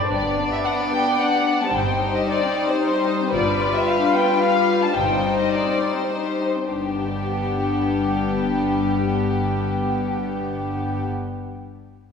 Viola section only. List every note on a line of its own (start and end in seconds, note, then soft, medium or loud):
0.09 1.68 B3 soft
0.09 1.68 D4 soft
1.72 4.91 G3 soft
1.72 3.30 D#4 soft
3.33 4.95 F4 soft
4.95 6.45 G3 soft
4.95 6.45 D#4 soft
6.69 11.04 G3 soft
6.69 11.04 B3 soft